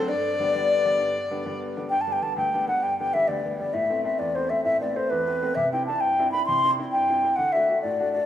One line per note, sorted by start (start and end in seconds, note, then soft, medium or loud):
0.08 0.98 G2 medium
0.08 1.62 D5 medium
0.08 1.58 D5 medium
0.39 0.53 D3 soft
0.39 0.53 G3 soft
0.39 0.53 B3 medium
0.54 0.83 D3 soft
0.54 0.84 G3 soft
0.54 0.84 B3 soft
0.85 1.15 D3 soft
0.85 1.15 G3 soft
0.85 1.15 B3 medium
1.00 1.88 G2 medium
1.31 1.44 D3 medium
1.31 1.44 G3 soft
1.31 1.45 B3 medium
1.45 1.75 D3 soft
1.45 1.76 G3 soft
1.45 1.76 B3 medium
1.77 1.91 D3 medium
1.77 1.91 G3 soft
1.77 1.91 B3 medium
1.90 2.22 G2 medium
1.90 2.03 G5 medium
2.01 2.14 A5 medium
2.07 2.21 D3 soft
2.07 2.21 G3 soft
2.07 2.21 B3 soft
2.12 2.24 G5 medium
2.22 2.47 D3 soft
2.22 2.47 G3 soft
2.22 2.47 B3 soft
2.22 2.36 A5 medium
2.36 2.67 D2 medium
2.36 2.66 G5 medium
2.53 2.66 D3 soft
2.53 2.67 G3 soft
2.53 2.67 B3 medium
2.67 2.92 D3 soft
2.67 2.93 G3 soft
2.67 2.93 B3 soft
2.67 2.84 F#5 medium
2.83 3.13 G2 medium
2.83 2.98 G5 medium
2.99 3.12 D3 soft
2.99 3.13 G3 soft
2.99 3.13 B3 soft
2.99 3.15 G5 medium
3.14 3.38 D3 medium
3.14 3.39 G3 soft
3.14 3.39 B3 medium
3.14 3.29 E5 medium
3.28 3.58 D2 medium
3.28 3.59 D5 medium
3.44 3.58 D3 soft
3.44 3.58 G3 soft
3.44 3.58 B3 soft
3.59 3.71 D3 soft
3.59 3.71 G3 soft
3.59 3.71 B3 soft
3.59 3.75 D5 medium
3.74 4.04 A2 medium
3.74 4.04 E5 medium
3.90 4.03 A3 soft
3.90 4.03 B3 soft
3.90 4.04 C4 soft
4.04 4.29 A3 soft
4.04 4.30 B3 soft
4.04 4.30 C4 soft
4.04 4.20 E5 medium
4.19 4.49 E2 medium
4.19 4.37 D5 medium
4.35 4.48 A3 soft
4.35 4.49 B3 soft
4.35 4.49 C4 soft
4.35 4.51 C5 medium
4.50 4.75 A3 soft
4.50 4.75 B3 soft
4.50 4.76 C4 soft
4.50 4.64 E5 medium
4.64 4.95 A2 soft
4.64 4.80 E5 medium
4.81 4.94 A3 soft
4.81 4.95 B3 soft
4.81 4.95 C4 soft
4.81 4.98 D5 medium
4.96 5.21 A3 soft
4.96 5.21 B3 soft
4.96 5.21 C4 medium
4.96 5.11 C5 medium
5.10 5.41 E2 medium
5.10 5.57 B4 medium
5.27 5.40 A3 soft
5.27 5.41 B3 soft
5.27 5.41 C4 soft
5.42 5.54 A3 soft
5.42 5.54 B3 soft
5.42 5.54 C4 soft
5.55 5.87 C3 medium
5.55 5.72 E5 medium
5.72 5.87 C4 soft
5.72 5.87 D4 soft
5.72 5.88 E4 soft
5.72 5.86 G5 medium
5.86 6.13 C4 soft
5.86 6.13 D4 soft
5.86 6.13 E4 soft
5.86 6.02 A5 medium
6.01 6.32 G2 medium
6.01 6.31 G5 medium
6.19 6.32 C4 soft
6.19 6.32 D4 soft
6.19 6.33 E4 medium
6.32 6.58 C4 soft
6.32 6.58 D4 soft
6.32 6.59 E4 soft
6.32 6.45 B5 medium
6.46 6.78 C3 medium
6.46 6.71 C6 loud
6.64 6.77 C4 soft
6.64 6.77 D4 soft
6.64 6.78 E4 medium
6.79 7.03 C4 soft
6.79 7.04 D4 soft
6.79 7.04 E4 medium
6.92 7.24 G2 medium
6.92 7.38 G5 medium
7.10 7.22 C4 soft
7.10 7.23 D4 soft
7.10 7.23 E4 soft
7.24 7.36 C4 soft
7.24 7.36 D4 soft
7.24 7.36 E4 soft
7.36 7.68 D3 medium
7.36 7.54 F#5 medium
7.52 7.67 A3 soft
7.52 7.68 D4 soft
7.52 7.68 F#4 soft
7.52 7.81 E5 medium
7.69 7.94 A3 soft
7.69 7.94 D4 soft
7.69 7.94 F#4 soft
7.82 8.14 A2 soft
7.82 8.12 D5 medium
8.00 8.12 A3 soft
8.00 8.13 D4 soft
8.00 8.13 F#4 medium
8.12 8.26 A3 soft
8.12 8.26 D4 soft
8.12 8.26 F#4 soft
8.12 8.26 D5 medium